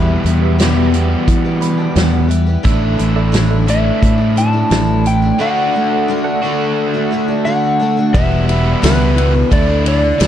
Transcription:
Already playing: fingered electric bass E2, twelve-string acoustic guitar E2 B2 E3 G3 B3 G4, overdriven electric guitar E2 B2 E3 G3 B3 G4, reed electric piano G4 B4 E5, electric slide guitar E5
0.24 fingered electric bass E2, twelve-string acoustic guitar E3 G3 B3 G4, closed hi-hat
0.42 reed electric piano G4 B4 E5
0.59 twelve-string acoustic guitar E2 B2 E3 G3 B3 G4, snare, closed hi-hat
0.76 reed electric piano G4 B4 E5
0.92 twelve-string acoustic guitar E3 G3 B3 G4, closed hi-hat
1.28 fingered electric bass E3, kick, closed hi-hat
1.45 twelve-string acoustic guitar E3 G3 B3 G4
1.61 twelve-string acoustic guitar E3 G3 B3 G4, reed electric piano B5, closed hi-hat
1.78 twelve-string acoustic guitar E3 G3 B3 G4, reed electric piano A5
1.96 twelve-string acoustic guitar E2 B2 E3 G3 B3 G4, fingered electric bass E2, reed electric piano G5, snare, closed hi-hat
2.14 reed electric piano F#5
2.29 twelve-string acoustic guitar E3 G3 B3 G4, reed electric piano E5, closed hi-hat
2.47 twelve-string acoustic guitar E3 G3 B3 G4
2.63 fingered electric bass A1, twelve-string acoustic guitar A2 D3 A3 D4 E4, overdriven electric guitar E3, reed electric piano A4 D5 E5, kick, closed hi-hat
2.98 fingered electric bass A1, twelve-string acoustic guitar D3 A3 D4 E4, closed hi-hat
3.16 reed electric piano A4 D5 E5
3.32 twelve-string acoustic guitar A2 D3 A3 D4 E4, snare, closed hi-hat
3.50 reed electric piano A4 D5 E5
3.66 overdriven electric guitar A2 E3, twelve-string acoustic guitar D3 A3 D4 E4, electric slide guitar E5, closed hi-hat
4.02 fingered electric bass A2, kick, closed hi-hat
4.18 twelve-string acoustic guitar A3 D4 E4
4.36 twelve-string acoustic guitar D3 A3 D4 E4, electric slide guitar A5, closed hi-hat
4.53 twelve-string acoustic guitar A3 D4 E4
4.70 fingered electric bass A1, twelve-string acoustic guitar A2 D3 A3 D4 E4, snare, closed hi-hat
5.04 twelve-string acoustic guitar D3 A3 D4 E4, electric slide guitar G5, closed hi-hat
5.22 twelve-string acoustic guitar A3 D4 E4
5.39 twelve-string acoustic guitar D3 A3 D4 F#4, reed electric piano A4 D5 F#5, electric slide guitar F#5
5.74 twelve-string acoustic guitar D3 A3 D4 F#4
5.91 reed electric piano A4 D5 F#5
6.08 twelve-string acoustic guitar D3 A3 D4 F#4
6.24 reed electric piano A4 D5 F#5
6.42 twelve-string acoustic guitar D3 A3 D4, overdriven electric guitar F#4
6.46 twelve-string acoustic guitar F#4
6.92 twelve-string acoustic guitar D4 F#4, electric slide guitar E5
6.97 twelve-string acoustic guitar A3
7.11 twelve-string acoustic guitar D3 A3 D4 F#4
7.28 twelve-string acoustic guitar A3 D4 F#4
7.45 twelve-string acoustic guitar D3 A3 D4 F#4, electric slide guitar F#5
7.80 twelve-string acoustic guitar D3 A3 D4 F#4
7.97 twelve-string acoustic guitar A3 D4 F#4
8.14 fingered electric bass E1, twelve-string acoustic guitar E2 B2 E3 G3 B3 F#4, overdriven electric guitar E4, reed electric piano G4 E5 F#5, electric slide guitar E5, kick, ride
8.48 twelve-string acoustic guitar E3 G3 B3 F#4, overdriven electric guitar E4, ride
8.65 overdriven electric guitar E3 G3 B3 E4
8.82 fingered electric bass C#2, twelve-string acoustic guitar E2 B2 E3 G3 B3 F#4, overdriven electric guitar E4, electric slide guitar B4, snare, ride, tambourine
9.16 twelve-string acoustic guitar E3 G3 B3 F#4, overdriven electric guitar E4, ride
9.34 twelve-string acoustic guitar E3 G3 B3 F#4, muted overdriven electric guitar stroke
9.51 fingered electric bass D2, twelve-string acoustic guitar D3 A3 D4 E4, reed electric piano A4 D5 E5, electric slide guitar D5, kick, ride
9.67 twelve-string acoustic guitar A3 D4 E4
9.86 overdriven electric guitar D3 A3 D4 E4, electric slide guitar D5, ride
10.02 twelve-string acoustic guitar A3 D4 E4, muted overdriven electric guitar stroke
10.20 fingered electric bass D2, twelve-string acoustic guitar D3 A3 D4 E4, snare, ride, tambourine

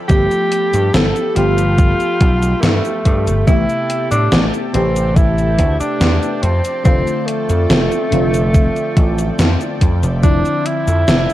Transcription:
Already playing: analog synth pad F3 A4 G5 B5
0.08 slap bass G1, fm electric piano F3 A3 B3 G4, tenor saxophone G4, kick, closed hi-hat, cabasa
0.31 closed hi-hat, cabasa
0.52 closed hi-hat
0.73 slap bass G2, closed hi-hat, cabasa
0.93 slap bass G1, tenor saxophone A4, snare, closed hi-hat, cabasa
1.16 closed hi-hat, cabasa
1.35 slap bass G1, fm electric piano F3 A3 B3 G4, tenor saxophone F4, closed hi-hat
1.58 closed hi-hat, cabasa
1.78 kick, closed hi-hat, cabasa
2.00 closed hi-hat, cabasa
2.21 slap bass B1, kick, closed hi-hat
2.43 closed hi-hat, cabasa
2.62 slap bass G2, tenor saxophone A3, snare, closed hi-hat, cabasa
2.85 closed hi-hat, cabasa
3.05 slap bass G2, kick, closed hi-hat
3.27 slap bass G1, closed hi-hat, cabasa
3.46 slap bass A1, fm electric piano C3 A3 B3 G4, tenor saxophone E4, analog synth pad G4 A4 G5 A5, kick, closed hi-hat, cabasa
3.69 closed hi-hat, cabasa
3.90 closed hi-hat
4.11 slap bass A2, tenor saxophone D4, closed hi-hat, cabasa
4.32 slap bass A1, snare, closed hi-hat, cabasa
4.54 closed hi-hat, cabasa
4.73 slap bass A1, fm electric piano C3 A3 G4 B4, tenor saxophone C4, closed hi-hat
4.96 closed hi-hat, cabasa
5.16 tenor saxophone E4, kick, closed hi-hat, cabasa
5.38 closed hi-hat, cabasa
5.59 slap bass D2, kick, closed hi-hat
5.80 tenor saxophone D4, muted slap bass stroke, closed hi-hat, cabasa
6.01 slap bass E2, snare, closed hi-hat, cabasa
6.23 closed hi-hat, cabasa
6.43 slap bass F2, analog synth pad F3 D5, tenor saxophone C4, closed hi-hat
6.65 closed hi-hat, cabasa
6.84 slap bass F1, fm electric piano D3 A3 C4 F4, tenor saxophone C4, kick, closed hi-hat, cabasa
7.07 closed hi-hat, cabasa
7.26 tenor saxophone A3, closed hi-hat
7.50 slap bass F2, closed hi-hat, cabasa
7.70 slap bass F1, snare, closed hi-hat, cabasa
7.92 closed hi-hat, cabasa
8.11 slap bass F1, fm electric piano D3 A3 C4 F4, closed hi-hat
8.34 closed hi-hat, cabasa
8.54 kick, closed hi-hat, cabasa
8.76 closed hi-hat, cabasa
8.97 slap bass A1, kick, closed hi-hat
9.18 closed hi-hat, cabasa
9.39 slap bass F2, snare, closed hi-hat, cabasa
9.61 closed hi-hat, cabasa
9.81 slap bass F2, analog synth pad E5, kick, closed hi-hat
10.03 slap bass F1, closed hi-hat, cabasa
10.22 slap bass F1, fm electric piano D3 F3 C4 E4, tenor saxophone D4, kick, closed hi-hat, cabasa
10.45 closed hi-hat, cabasa
10.66 tenor saxophone E4, closed hi-hat
10.88 slap bass F2, closed hi-hat, cabasa
11.08 slap bass F1, snare, closed hi-hat, cabasa
11.30 closed hi-hat, cabasa

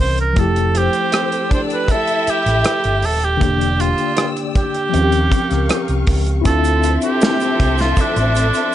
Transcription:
Already playing: tine electric piano E3 C4 C#4 A#4
0.00 fingered electric bass C2, cor anglais C5
0.18 cor anglais A#4, closed hi-hat
0.33 fingered electric bass F1, tine electric piano F3 A3, kick, closed hi-hat
0.37 tine electric piano E4 G4, string section A4 G5 E6, cor anglais A4
0.56 closed hi-hat
0.74 string section C4 C5, cor anglais G4, closed hi-hat
0.93 closed hi-hat
1.12 cross-stick, closed hi-hat
1.32 closed hi-hat
1.51 string section D4 D5, cor anglais C5, kick, closed hi-hat
1.70 cor anglais B4, closed hi-hat
1.88 string section E4 E5, cor anglais A4, kick, closed hi-hat
2.07 closed hi-hat
2.27 cor anglais G4, muted fingered electric bass stroke, closed hi-hat
2.46 fingered electric bass A1, cross-stick, closed hi-hat
2.64 cross-stick, closed hi-hat
2.84 fingered electric bass G1, closed hi-hat
3.02 fingered electric bass D#1, cor anglais A4, open hi-hat
3.22 cor anglais G4, closed hi-hat
3.37 tine electric piano D3 A#3, string section D5 E6
3.41 fingered electric bass E1, tine electric piano D4 G4, kick, closed hi-hat
3.61 closed hi-hat
3.80 cor anglais F4, closed hi-hat
3.98 closed hi-hat
4.17 cross-stick, closed hi-hat
4.37 closed hi-hat
4.55 cor anglais G4, kick, closed hi-hat
4.74 closed hi-hat
4.89 tine electric piano F3 C4
4.94 fingered electric bass D#2, tine electric piano C#4 F4, string section A#4 F5 C#6, closed hi-hat
5.04 tine electric piano G4
5.12 closed hi-hat
5.32 kick, closed hi-hat
5.51 fingered electric bass C#2, cross-stick, closed hi-hat
5.69 cross-stick, closed hi-hat
5.88 fingered electric bass C2, closed hi-hat
6.07 fingered electric bass C#2, kick, open hi-hat
6.26 closed hi-hat
6.41 tine electric piano C4 E4, string section E5, kick, closed hi-hat, shaker
6.45 fingered electric bass D2, string section F3 C4 A4 E5 C6, tine electric piano D4 F4, cor anglais A4
6.64 closed hi-hat, shaker
6.83 closed hi-hat, shaker
7.01 cor anglais G4, closed hi-hat, shaker
7.21 snare, closed hi-hat, shaker
7.40 closed hi-hat, shaker
7.60 fingered electric bass C2, kick, closed hi-hat
7.78 cor anglais F4, snare, closed hi-hat, shaker
7.96 cor anglais D4, kick, closed hi-hat, shaker
8.16 fingered electric bass A1, closed hi-hat, shaker
8.35 closed hi-hat, shaker
8.54 closed hi-hat, shaker

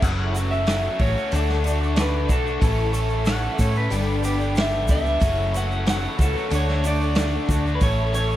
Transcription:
Already playing: tonewheel organ A4
0.01 fingered electric bass F#1, overdriven electric guitar F#2 C#3 F#3 A3 C#4 F#4, twelve-string acoustic guitar E3, tonewheel organ F#5 E6, clean electric guitar F#5, kick, crash, shaker
0.34 twelve-string acoustic guitar E3, overdriven electric guitar F#3 A3 C#4 F#4, open hi-hat, shaker
0.51 clean electric guitar E5, shaker
0.66 overdriven electric guitar F#2 C#3 F#3 A3 C#4, twelve-string acoustic guitar E3, snare, open hi-hat, shaker
0.70 overdriven electric guitar F#4
0.84 overdriven electric guitar F#3 A3 C#4 F#4
0.99 fingered electric bass A1, twelve-string acoustic guitar E3, overdriven electric guitar F#3 A3 C#4 F#4, clean electric guitar C#5, kick, open hi-hat
1.16 overdriven electric guitar F#3 A3 C#4 F#4, shaker
1.31 fingered electric bass D2, overdriven electric guitar D3 A3 D4 F#4, tonewheel organ A4 D6, clean electric guitar A4, open hi-hat, shaker
1.48 overdriven electric guitar A3 D4 F#4, snare
1.64 overdriven electric guitar D3 A3 D4 F#4, open hi-hat, shaker
1.80 overdriven electric guitar A3 D4 F#4, shaker
1.96 overdriven electric guitar D3 A3 D4 F#4, clean electric guitar B4, snare, open hi-hat, shaker
2.28 fingered electric bass B1, overdriven electric guitar D3 A3 D4 F#4, clean electric guitar A4, kick, open hi-hat, shaker
2.44 overdriven electric guitar A3 D4 F#4, shaker
2.59 fingered electric bass A1, overdriven electric guitar A2 E3 A3 C#4 A4, tonewheel organ A4 E5 C#6, kick, open hi-hat, shaker
2.93 overdriven electric guitar E3 A3 C#4 A4, open hi-hat, shaker
3.09 shaker
3.25 overdriven electric guitar A2 E3 A3 C#4 A4, pedal steel guitar F#5, snare, open hi-hat, shaker
3.42 overdriven electric guitar A3 C#4 A4
3.58 fingered electric bass A2, overdriven electric guitar E3 A3 C#4 A4, pedal steel guitar C#5, kick, open hi-hat, shaker
3.75 overdriven electric guitar A3 C#4 A4, pedal steel guitar B4, shaker
3.90 fingered electric bass G1, overdriven electric guitar G2 D3 G3 B3 D4 G4, twelve-string acoustic guitar A4, tonewheel organ A4 G5 B5, pedal steel guitar A4, open hi-hat, shaker
4.07 overdriven electric guitar G3 B3 D4 G4
4.23 overdriven electric guitar G3 B3 D4 G4, pedal steel guitar G4, twelve-string acoustic guitar A4, open hi-hat, shaker
4.39 overdriven electric guitar G3 B3 D4 G4, shaker
4.55 overdriven electric guitar G2 D3 G3 B3 D4 G4, twelve-string acoustic guitar A4, snare, open hi-hat, shaker
4.60 clean electric guitar E5
4.87 fingered electric bass C#2, overdriven electric guitar G3 B3 D4 G4, twelve-string acoustic guitar A4, clean electric guitar E5, kick, open hi-hat, shaker
5.04 overdriven electric guitar G3 B3 D4 G4, shaker
5.21 fingered electric bass F#1, overdriven electric guitar F#2 C#3 F#3 A3 C#4 F#4, twelve-string acoustic guitar E3, tonewheel organ F#5 E6, kick, open hi-hat, shaker
5.53 twelve-string acoustic guitar E3, overdriven electric guitar F#3 A3 C#4 F#4, open hi-hat, shaker
5.57 clean electric guitar F#5
5.71 shaker
5.85 overdriven electric guitar F#2 C#3 F#3 A3 C#4 F#4, twelve-string acoustic guitar E3, snare, open hi-hat, shaker
5.90 clean electric guitar F#5
6.01 overdriven electric guitar F#3 A3 C#4 F#4
6.18 fingered electric bass C#2, twelve-string acoustic guitar E3, overdriven electric guitar F#3 A3 C#4 F#4, kick, open hi-hat, shaker
6.22 clean electric guitar A4
6.35 overdriven electric guitar F#3 A3 C#4 F#4, shaker
6.50 fingered electric bass D2, overdriven electric guitar D3 A3 D4 F#4, tonewheel organ A5, open hi-hat, shaker
6.55 clean electric guitar C#5
6.67 overdriven electric guitar A3 D4 F#4, snare
6.83 overdriven electric guitar D3 A3 D4 F#4, open hi-hat, shaker
6.87 clean electric guitar D5
7.00 overdriven electric guitar A3 D4 F#4, shaker
7.15 overdriven electric guitar D3 A3 D4, snare, open hi-hat, shaker
7.19 overdriven electric guitar F#4
7.47 fingered electric bass D2, overdriven electric guitar D3 A3 D4, twelve-string acoustic guitar F#4, kick, open hi-hat, shaker
7.52 overdriven electric guitar F#4
7.66 overdriven electric guitar A3 D4 F#4, shaker
7.75 clean electric guitar B4
7.81 fingered electric bass A1, overdriven electric guitar A2 E3 A3 C#4 A4, clean electric guitar C#5, tonewheel organ E5 C#6, kick, open hi-hat, shaker
8.14 overdriven electric guitar E3 A3 C#4 A4, clean electric guitar C#5, open hi-hat, shaker
8.31 shaker

